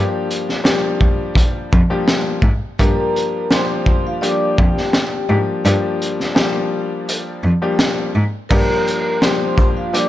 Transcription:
0.00 0.60 F3 medium
0.00 0.60 G3 medium
0.00 0.60 A#3 medium
0.00 0.60 D4 medium
0.00 0.60 G4 loud
0.31 closed hi-hat medium
0.49 snare soft
0.64 1.80 F3 medium
0.64 1.80 G3 medium
0.64 1.80 A#3 medium
0.64 1.80 D4 medium
0.64 1.80 G4 loud
0.64 snare loud
0.64 closed hi-hat medium
1.01 kick medium
1.35 kick medium
1.35 closed hi-hat medium
1.73 1.81 F2 medium
1.73 kick loud
1.90 2.39 F3 medium
1.90 2.39 G3 medium
1.90 2.39 A#3 medium
1.90 2.39 D4 medium
1.90 2.39 G4 loud
2.08 snare loud
2.08 closed hi-hat medium
2.42 2.50 G#2 medium
2.42 kick medium
2.79 2.88 G2 loud
2.79 3.45 F3 medium
2.79 3.46 G3 medium
2.79 3.46 A#3 medium
2.79 3.46 D4 medium
2.79 3.46 G4 loud
2.79 3.46 A#4 loud
2.79 3.47 A#5 medium
2.79 kick loud
2.79 closed hi-hat medium
3.16 closed hi-hat medium
3.51 4.17 F3 medium
3.51 4.17 G3 medium
3.51 4.17 A#3 medium
3.51 4.17 D4 medium
3.51 4.17 G4 loud
3.51 4.04 C5 medium
3.51 4.04 C6 medium
3.51 snare loud
3.51 closed hi-hat medium
3.86 kick medium
4.07 4.21 F4 medium
4.07 4.21 F5 medium
4.21 5.21 F3 medium
4.21 5.22 G3 medium
4.21 5.22 A#3 medium
4.21 5.22 D4 medium
4.21 5.22 G4 loud
4.21 4.54 D5 medium
4.21 4.54 D6 medium
4.21 closed hi-hat medium
4.58 4.67 F2 medium
4.58 5.61 G4 medium
4.58 5.61 G5 medium
4.58 kick loud
4.77 snare soft
4.93 snare loud
4.93 closed hi-hat medium
5.29 5.37 G#2 medium
5.29 5.62 F3 medium
5.29 5.62 G3 medium
5.29 5.62 A#3 medium
5.29 5.62 D4 medium
5.29 5.62 G4 medium
5.65 5.73 G2 loud
5.65 6.31 F3 medium
5.65 6.31 G3 medium
5.65 6.31 A#3 medium
5.65 6.31 D4 medium
5.65 6.31 G4 loud
5.65 closed hi-hat medium
6.02 closed hi-hat medium
6.20 snare soft
6.35 7.51 F3 medium
6.35 7.51 G3 medium
6.35 7.51 A#3 medium
6.35 7.52 D4 medium
6.35 7.52 G4 loud
6.35 snare loud
6.35 closed hi-hat medium
7.09 closed hi-hat medium
7.44 7.52 F2 medium
7.62 8.10 F3 medium
7.62 8.10 G3 medium
7.62 8.10 A#3 medium
7.62 8.10 D4 medium
7.62 8.10 G4 loud
7.79 snare loud
7.79 closed hi-hat medium
8.15 8.23 G#2 medium
8.49 8.59 G2 loud
8.49 9.17 F3 medium
8.49 9.17 G3 medium
8.49 9.17 A#3 medium
8.49 9.17 D4 medium
8.49 9.17 G4 loud
8.49 9.17 A#4 loud
8.49 9.18 A#5 medium
8.49 kick loud
8.49 crash medium
8.88 closed hi-hat medium
8.88 shaker medium
9.22 9.88 F3 medium
9.22 9.88 G3 medium
9.22 9.88 A#3 medium
9.22 9.89 D4 medium
9.22 9.89 G4 loud
9.22 9.74 C5 medium
9.22 9.74 C6 medium
9.22 snare loud
9.22 closed hi-hat medium
9.58 kick medium
9.58 shaker medium
9.77 9.92 F4 medium
9.77 9.91 F5 medium
9.93 10.09 F3 medium
9.93 10.09 G3 medium
9.93 10.09 A#3 medium
9.93 10.09 D4 medium
9.93 10.09 G4 loud
9.93 10.09 D5 medium
9.93 10.09 D6 medium
9.93 closed hi-hat medium

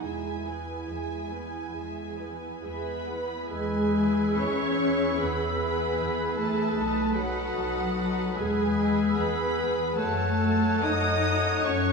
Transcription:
0.02 0.78 E2 soft
0.02 0.42 G#3 soft
0.02 3.08 E4 soft
0.02 0.42 G#4 soft
0.02 0.42 E5 soft
0.02 3.03 G#5 soft
0.44 0.88 B3 soft
0.44 0.88 E4 soft
0.44 0.88 B4 soft
0.87 1.63 E2 soft
0.87 1.30 G#3 soft
0.87 1.30 G#4 soft
0.87 1.31 E5 soft
1.30 1.73 B3 soft
1.30 1.73 E4 soft
1.30 1.73 B4 soft
1.72 2.53 E2 soft
1.72 2.15 G#3 soft
1.72 2.15 G#4 soft
1.72 2.15 E5 soft
2.18 2.63 B3 soft
2.18 2.63 E4 soft
2.18 2.63 B4 soft
2.62 3.39 E2 soft
2.62 3.07 G#3 soft
2.62 3.45 B3 soft
2.62 3.46 B3 soft
2.62 3.07 G#4 soft
2.62 3.46 B4 soft
2.62 3.08 E5 soft
2.62 3.46 B5 soft
3.06 3.49 B3 soft
3.06 3.49 E4 soft
3.06 3.50 B4 soft
3.48 4.28 E2 soft
3.48 4.38 G#3 medium
3.48 4.38 G#4 medium
3.48 6.72 G#4 soft
3.48 9.79 B4 soft
3.48 4.39 G#5 medium
3.48 6.71 E6 soft
3.93 4.78 E4 soft
3.93 4.78 G#4 soft
4.37 5.10 E2 soft
4.37 5.19 C#4 medium
4.37 5.19 C#5 medium
4.37 5.20 C#6 medium
4.79 5.57 E4 soft
4.79 5.57 G#4 soft
5.19 5.89 E2 medium
5.19 6.37 B3 soft
5.19 6.35 B4 medium
5.19 6.38 B5 medium
5.58 6.36 E4 soft
5.58 6.36 G#4 soft
5.97 6.67 E2 soft
6.37 7.14 A3 soft
6.37 7.15 A3 soft
6.37 6.76 E4 soft
6.37 6.76 G#4 soft
6.37 7.16 A4 medium
6.37 7.15 A5 medium
6.75 7.46 B1 medium
6.75 7.16 D#4 soft
6.75 7.15 A4 soft
6.75 8.41 A4 soft
6.75 8.38 D#6 soft
7.15 8.35 F#3 soft
7.15 8.37 F#3 medium
7.15 7.96 D#4 soft
7.15 8.38 F#4 soft
7.15 7.95 A4 soft
7.15 8.37 F#5 medium
7.56 8.28 B1 soft
7.98 8.37 D#4 soft
7.98 8.38 A4 soft
8.36 9.08 E2 medium
8.36 9.17 G#3 medium
8.36 8.76 B3 soft
8.36 9.17 G#4 medium
8.36 8.77 G#4 soft
8.36 9.98 G#4 medium
8.36 9.17 G#5 medium
8.36 9.95 E6 medium
8.77 9.55 B3 soft
8.77 9.55 G#4 soft
9.16 9.87 E2 medium
9.16 9.97 B3 medium
9.16 9.95 B3 medium
9.16 9.95 B4 medium
9.16 9.97 B5 medium
9.56 9.96 B3 soft
9.56 9.96 G#4 soft
9.96 10.73 F#2 medium
9.96 10.81 A3 medium
9.96 10.39 A3 soft
9.96 10.83 A3 medium
9.96 10.39 F#4 soft
9.96 10.82 A4 medium
9.96 11.93 A4 soft
9.96 11.93 C#5 soft
9.96 10.81 A5 medium
9.96 11.93 F#6 soft
10.40 11.22 A3 soft
10.40 11.23 F#4 soft
10.82 11.54 F#2 medium
10.82 11.64 D#4 medium
10.82 11.47 D#4 medium
10.82 11.64 D#5 medium
10.82 11.64 D#6 medium
11.25 11.93 A3 soft
11.25 11.93 F#4 soft
11.64 11.93 F#2 medium
11.64 11.93 C#4 medium
11.64 11.93 C#5 medium
11.64 11.93 C#6 medium

